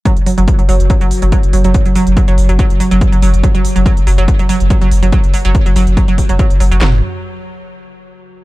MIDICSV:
0, 0, Header, 1, 5, 480
1, 0, Start_track
1, 0, Tempo, 422535
1, 62, Time_signature, 4, 2, 24, 8
1, 9588, End_track
2, 0, Start_track
2, 0, Title_t, "Synth arpeggio sound"
2, 0, Program_c, 0, 84
2, 62, Note_on_c, 0, 54, 99
2, 129, Note_off_c, 0, 54, 0
2, 302, Note_on_c, 0, 54, 75
2, 342, Note_off_c, 0, 54, 0
2, 429, Note_on_c, 0, 54, 99
2, 489, Note_off_c, 0, 54, 0
2, 667, Note_on_c, 0, 54, 78
2, 704, Note_off_c, 0, 54, 0
2, 781, Note_on_c, 0, 54, 107
2, 848, Note_off_c, 0, 54, 0
2, 1022, Note_on_c, 0, 54, 79
2, 1062, Note_off_c, 0, 54, 0
2, 1148, Note_on_c, 0, 54, 101
2, 1208, Note_off_c, 0, 54, 0
2, 1390, Note_on_c, 0, 54, 75
2, 1425, Note_off_c, 0, 54, 0
2, 1502, Note_on_c, 0, 54, 98
2, 1569, Note_off_c, 0, 54, 0
2, 1742, Note_on_c, 0, 54, 73
2, 1782, Note_off_c, 0, 54, 0
2, 1869, Note_on_c, 0, 54, 97
2, 1929, Note_off_c, 0, 54, 0
2, 2109, Note_on_c, 0, 54, 75
2, 2145, Note_off_c, 0, 54, 0
2, 2222, Note_on_c, 0, 54, 104
2, 2289, Note_off_c, 0, 54, 0
2, 2463, Note_on_c, 0, 54, 84
2, 2502, Note_off_c, 0, 54, 0
2, 2589, Note_on_c, 0, 54, 100
2, 2649, Note_off_c, 0, 54, 0
2, 2828, Note_on_c, 0, 54, 76
2, 2865, Note_off_c, 0, 54, 0
2, 2941, Note_on_c, 0, 54, 104
2, 3009, Note_off_c, 0, 54, 0
2, 3181, Note_on_c, 0, 54, 78
2, 3222, Note_off_c, 0, 54, 0
2, 3308, Note_on_c, 0, 54, 100
2, 3368, Note_off_c, 0, 54, 0
2, 3548, Note_on_c, 0, 54, 76
2, 3584, Note_off_c, 0, 54, 0
2, 3662, Note_on_c, 0, 54, 104
2, 3729, Note_off_c, 0, 54, 0
2, 3903, Note_on_c, 0, 54, 81
2, 3943, Note_off_c, 0, 54, 0
2, 4028, Note_on_c, 0, 54, 105
2, 4088, Note_off_c, 0, 54, 0
2, 4268, Note_on_c, 0, 54, 80
2, 4304, Note_off_c, 0, 54, 0
2, 4381, Note_on_c, 0, 54, 102
2, 4448, Note_off_c, 0, 54, 0
2, 4622, Note_on_c, 0, 54, 80
2, 4662, Note_off_c, 0, 54, 0
2, 4748, Note_on_c, 0, 54, 100
2, 4808, Note_off_c, 0, 54, 0
2, 4990, Note_on_c, 0, 54, 78
2, 5025, Note_off_c, 0, 54, 0
2, 5102, Note_on_c, 0, 54, 100
2, 5169, Note_off_c, 0, 54, 0
2, 5343, Note_on_c, 0, 54, 81
2, 5383, Note_off_c, 0, 54, 0
2, 5470, Note_on_c, 0, 54, 103
2, 5529, Note_off_c, 0, 54, 0
2, 5709, Note_on_c, 0, 54, 76
2, 5745, Note_off_c, 0, 54, 0
2, 5823, Note_on_c, 0, 54, 98
2, 5889, Note_off_c, 0, 54, 0
2, 6063, Note_on_c, 0, 54, 78
2, 6103, Note_off_c, 0, 54, 0
2, 6191, Note_on_c, 0, 54, 108
2, 6249, Note_off_c, 0, 54, 0
2, 6430, Note_on_c, 0, 54, 77
2, 6465, Note_off_c, 0, 54, 0
2, 6544, Note_on_c, 0, 54, 103
2, 6610, Note_off_c, 0, 54, 0
2, 6784, Note_on_c, 0, 54, 85
2, 6823, Note_off_c, 0, 54, 0
2, 6910, Note_on_c, 0, 54, 101
2, 6969, Note_off_c, 0, 54, 0
2, 7150, Note_on_c, 0, 54, 75
2, 7185, Note_off_c, 0, 54, 0
2, 7262, Note_on_c, 0, 54, 101
2, 7329, Note_off_c, 0, 54, 0
2, 7501, Note_on_c, 0, 54, 76
2, 7542, Note_off_c, 0, 54, 0
2, 7628, Note_on_c, 0, 54, 104
2, 7688, Note_off_c, 0, 54, 0
2, 7741, Note_on_c, 0, 54, 91
2, 7965, Note_off_c, 0, 54, 0
2, 9588, End_track
3, 0, Start_track
3, 0, Title_t, "Synth drone"
3, 0, Program_c, 1, 95
3, 61, Note_on_c, 1, 54, 72
3, 7792, Note_off_c, 1, 54, 0
3, 9588, End_track
4, 0, Start_track
4, 0, Title_t, "Sub bass"
4, 0, Program_c, 2, 38
4, 188, Note_on_c, 2, 30, 77
4, 299, Note_off_c, 2, 30, 0
4, 427, Note_on_c, 2, 30, 77
4, 539, Note_off_c, 2, 30, 0
4, 668, Note_on_c, 2, 30, 77
4, 774, Note_off_c, 2, 30, 0
4, 780, Note_on_c, 2, 30, 96
4, 899, Note_off_c, 2, 30, 0
4, 906, Note_on_c, 2, 30, 80
4, 1019, Note_off_c, 2, 30, 0
4, 1147, Note_on_c, 2, 30, 76
4, 1259, Note_off_c, 2, 30, 0
4, 1386, Note_on_c, 2, 30, 83
4, 1499, Note_off_c, 2, 30, 0
4, 1628, Note_on_c, 2, 30, 79
4, 1733, Note_off_c, 2, 30, 0
4, 1740, Note_on_c, 2, 30, 100
4, 1860, Note_off_c, 2, 30, 0
4, 1866, Note_on_c, 2, 30, 84
4, 1979, Note_off_c, 2, 30, 0
4, 2108, Note_on_c, 2, 30, 77
4, 2219, Note_off_c, 2, 30, 0
4, 2347, Note_on_c, 2, 30, 80
4, 2459, Note_off_c, 2, 30, 0
4, 2587, Note_on_c, 2, 30, 77
4, 2694, Note_off_c, 2, 30, 0
4, 2701, Note_on_c, 2, 30, 100
4, 2821, Note_off_c, 2, 30, 0
4, 2828, Note_on_c, 2, 30, 80
4, 2939, Note_off_c, 2, 30, 0
4, 3068, Note_on_c, 2, 30, 72
4, 3179, Note_off_c, 2, 30, 0
4, 3308, Note_on_c, 2, 30, 86
4, 3420, Note_off_c, 2, 30, 0
4, 3548, Note_on_c, 2, 30, 78
4, 3656, Note_off_c, 2, 30, 0
4, 3663, Note_on_c, 2, 30, 100
4, 3783, Note_off_c, 2, 30, 0
4, 3790, Note_on_c, 2, 30, 84
4, 3900, Note_off_c, 2, 30, 0
4, 4029, Note_on_c, 2, 30, 75
4, 4140, Note_off_c, 2, 30, 0
4, 4269, Note_on_c, 2, 30, 84
4, 4380, Note_off_c, 2, 30, 0
4, 4509, Note_on_c, 2, 30, 76
4, 4616, Note_off_c, 2, 30, 0
4, 4622, Note_on_c, 2, 30, 98
4, 4742, Note_off_c, 2, 30, 0
4, 4749, Note_on_c, 2, 30, 82
4, 4860, Note_off_c, 2, 30, 0
4, 4989, Note_on_c, 2, 30, 77
4, 5100, Note_off_c, 2, 30, 0
4, 5229, Note_on_c, 2, 30, 83
4, 5340, Note_off_c, 2, 30, 0
4, 5468, Note_on_c, 2, 30, 78
4, 5574, Note_off_c, 2, 30, 0
4, 5580, Note_on_c, 2, 30, 103
4, 5700, Note_off_c, 2, 30, 0
4, 5707, Note_on_c, 2, 30, 82
4, 5819, Note_off_c, 2, 30, 0
4, 5947, Note_on_c, 2, 30, 77
4, 6059, Note_off_c, 2, 30, 0
4, 6187, Note_on_c, 2, 30, 82
4, 6299, Note_off_c, 2, 30, 0
4, 6428, Note_on_c, 2, 30, 78
4, 6533, Note_off_c, 2, 30, 0
4, 6540, Note_on_c, 2, 30, 101
4, 6660, Note_off_c, 2, 30, 0
4, 6667, Note_on_c, 2, 30, 84
4, 6779, Note_off_c, 2, 30, 0
4, 6907, Note_on_c, 2, 30, 76
4, 7019, Note_off_c, 2, 30, 0
4, 7149, Note_on_c, 2, 30, 82
4, 7260, Note_off_c, 2, 30, 0
4, 7387, Note_on_c, 2, 30, 82
4, 7494, Note_off_c, 2, 30, 0
4, 7500, Note_on_c, 2, 30, 103
4, 7621, Note_off_c, 2, 30, 0
4, 7628, Note_on_c, 2, 30, 83
4, 7734, Note_off_c, 2, 30, 0
4, 7741, Note_on_c, 2, 30, 98
4, 7964, Note_off_c, 2, 30, 0
4, 9588, End_track
5, 0, Start_track
5, 0, Title_t, "Drums"
5, 62, Note_on_c, 9, 36, 116
5, 62, Note_on_c, 9, 42, 78
5, 175, Note_off_c, 9, 36, 0
5, 176, Note_off_c, 9, 42, 0
5, 189, Note_on_c, 9, 42, 54
5, 300, Note_on_c, 9, 46, 106
5, 302, Note_off_c, 9, 42, 0
5, 414, Note_off_c, 9, 46, 0
5, 428, Note_on_c, 9, 42, 53
5, 541, Note_off_c, 9, 42, 0
5, 541, Note_on_c, 9, 42, 81
5, 542, Note_on_c, 9, 36, 122
5, 655, Note_off_c, 9, 36, 0
5, 655, Note_off_c, 9, 42, 0
5, 669, Note_on_c, 9, 42, 55
5, 782, Note_off_c, 9, 42, 0
5, 782, Note_on_c, 9, 46, 101
5, 895, Note_off_c, 9, 46, 0
5, 909, Note_on_c, 9, 42, 54
5, 1021, Note_off_c, 9, 42, 0
5, 1021, Note_on_c, 9, 36, 114
5, 1021, Note_on_c, 9, 42, 78
5, 1135, Note_off_c, 9, 36, 0
5, 1135, Note_off_c, 9, 42, 0
5, 1148, Note_on_c, 9, 42, 53
5, 1261, Note_on_c, 9, 46, 102
5, 1262, Note_off_c, 9, 42, 0
5, 1374, Note_off_c, 9, 46, 0
5, 1388, Note_on_c, 9, 42, 54
5, 1501, Note_off_c, 9, 42, 0
5, 1501, Note_on_c, 9, 36, 111
5, 1501, Note_on_c, 9, 42, 81
5, 1615, Note_off_c, 9, 36, 0
5, 1615, Note_off_c, 9, 42, 0
5, 1628, Note_on_c, 9, 42, 55
5, 1740, Note_on_c, 9, 46, 106
5, 1742, Note_off_c, 9, 42, 0
5, 1854, Note_off_c, 9, 46, 0
5, 1867, Note_on_c, 9, 42, 53
5, 1981, Note_off_c, 9, 42, 0
5, 1981, Note_on_c, 9, 42, 82
5, 1982, Note_on_c, 9, 36, 123
5, 2094, Note_off_c, 9, 42, 0
5, 2095, Note_off_c, 9, 36, 0
5, 2108, Note_on_c, 9, 42, 55
5, 2221, Note_off_c, 9, 42, 0
5, 2221, Note_on_c, 9, 46, 105
5, 2334, Note_off_c, 9, 46, 0
5, 2349, Note_on_c, 9, 42, 53
5, 2462, Note_off_c, 9, 42, 0
5, 2462, Note_on_c, 9, 36, 127
5, 2462, Note_on_c, 9, 42, 82
5, 2576, Note_off_c, 9, 36, 0
5, 2576, Note_off_c, 9, 42, 0
5, 2589, Note_on_c, 9, 42, 56
5, 2702, Note_off_c, 9, 42, 0
5, 2702, Note_on_c, 9, 46, 105
5, 2816, Note_off_c, 9, 46, 0
5, 2829, Note_on_c, 9, 42, 56
5, 2942, Note_off_c, 9, 42, 0
5, 2942, Note_on_c, 9, 36, 118
5, 2942, Note_on_c, 9, 42, 81
5, 3056, Note_off_c, 9, 36, 0
5, 3056, Note_off_c, 9, 42, 0
5, 3070, Note_on_c, 9, 42, 54
5, 3183, Note_on_c, 9, 46, 109
5, 3184, Note_off_c, 9, 42, 0
5, 3297, Note_off_c, 9, 46, 0
5, 3309, Note_on_c, 9, 42, 56
5, 3422, Note_on_c, 9, 36, 117
5, 3423, Note_off_c, 9, 42, 0
5, 3423, Note_on_c, 9, 42, 84
5, 3536, Note_off_c, 9, 36, 0
5, 3536, Note_off_c, 9, 42, 0
5, 3550, Note_on_c, 9, 42, 53
5, 3663, Note_off_c, 9, 42, 0
5, 3663, Note_on_c, 9, 46, 110
5, 3777, Note_off_c, 9, 46, 0
5, 3791, Note_on_c, 9, 42, 55
5, 3902, Note_on_c, 9, 36, 121
5, 3903, Note_off_c, 9, 42, 0
5, 3903, Note_on_c, 9, 42, 81
5, 4016, Note_off_c, 9, 36, 0
5, 4016, Note_off_c, 9, 42, 0
5, 4030, Note_on_c, 9, 42, 52
5, 4143, Note_on_c, 9, 46, 112
5, 4144, Note_off_c, 9, 42, 0
5, 4256, Note_off_c, 9, 46, 0
5, 4270, Note_on_c, 9, 42, 52
5, 4382, Note_on_c, 9, 36, 127
5, 4383, Note_off_c, 9, 42, 0
5, 4383, Note_on_c, 9, 42, 79
5, 4495, Note_off_c, 9, 36, 0
5, 4497, Note_off_c, 9, 42, 0
5, 4511, Note_on_c, 9, 42, 55
5, 4623, Note_on_c, 9, 46, 110
5, 4624, Note_off_c, 9, 42, 0
5, 4737, Note_off_c, 9, 46, 0
5, 4750, Note_on_c, 9, 42, 53
5, 4862, Note_on_c, 9, 36, 121
5, 4863, Note_off_c, 9, 42, 0
5, 4863, Note_on_c, 9, 42, 80
5, 4976, Note_off_c, 9, 36, 0
5, 4976, Note_off_c, 9, 42, 0
5, 4990, Note_on_c, 9, 42, 54
5, 5103, Note_on_c, 9, 46, 111
5, 5104, Note_off_c, 9, 42, 0
5, 5217, Note_off_c, 9, 46, 0
5, 5229, Note_on_c, 9, 42, 52
5, 5342, Note_on_c, 9, 36, 119
5, 5343, Note_off_c, 9, 42, 0
5, 5343, Note_on_c, 9, 42, 81
5, 5456, Note_off_c, 9, 36, 0
5, 5457, Note_off_c, 9, 42, 0
5, 5470, Note_on_c, 9, 42, 54
5, 5583, Note_off_c, 9, 42, 0
5, 5583, Note_on_c, 9, 46, 107
5, 5697, Note_off_c, 9, 46, 0
5, 5709, Note_on_c, 9, 42, 54
5, 5822, Note_off_c, 9, 42, 0
5, 5822, Note_on_c, 9, 36, 123
5, 5822, Note_on_c, 9, 42, 77
5, 5935, Note_off_c, 9, 42, 0
5, 5936, Note_off_c, 9, 36, 0
5, 5949, Note_on_c, 9, 42, 53
5, 6062, Note_on_c, 9, 46, 109
5, 6063, Note_off_c, 9, 42, 0
5, 6175, Note_off_c, 9, 46, 0
5, 6189, Note_on_c, 9, 42, 52
5, 6302, Note_off_c, 9, 42, 0
5, 6302, Note_on_c, 9, 36, 124
5, 6302, Note_on_c, 9, 42, 77
5, 6415, Note_off_c, 9, 36, 0
5, 6416, Note_off_c, 9, 42, 0
5, 6430, Note_on_c, 9, 42, 53
5, 6542, Note_on_c, 9, 46, 109
5, 6543, Note_off_c, 9, 42, 0
5, 6656, Note_off_c, 9, 46, 0
5, 6668, Note_on_c, 9, 42, 51
5, 6781, Note_on_c, 9, 36, 125
5, 6782, Note_off_c, 9, 42, 0
5, 6782, Note_on_c, 9, 42, 77
5, 6895, Note_off_c, 9, 36, 0
5, 6895, Note_off_c, 9, 42, 0
5, 6908, Note_on_c, 9, 42, 52
5, 7021, Note_on_c, 9, 36, 65
5, 7021, Note_on_c, 9, 46, 111
5, 7022, Note_off_c, 9, 42, 0
5, 7135, Note_off_c, 9, 36, 0
5, 7135, Note_off_c, 9, 46, 0
5, 7148, Note_on_c, 9, 42, 51
5, 7262, Note_off_c, 9, 42, 0
5, 7262, Note_on_c, 9, 36, 122
5, 7262, Note_on_c, 9, 42, 80
5, 7375, Note_off_c, 9, 36, 0
5, 7375, Note_off_c, 9, 42, 0
5, 7389, Note_on_c, 9, 42, 53
5, 7502, Note_off_c, 9, 42, 0
5, 7502, Note_on_c, 9, 46, 109
5, 7616, Note_off_c, 9, 46, 0
5, 7629, Note_on_c, 9, 42, 53
5, 7741, Note_on_c, 9, 38, 102
5, 7741, Note_on_c, 9, 39, 88
5, 7741, Note_on_c, 9, 43, 101
5, 7743, Note_off_c, 9, 42, 0
5, 7855, Note_off_c, 9, 38, 0
5, 7855, Note_off_c, 9, 39, 0
5, 7855, Note_off_c, 9, 43, 0
5, 9588, End_track
0, 0, End_of_file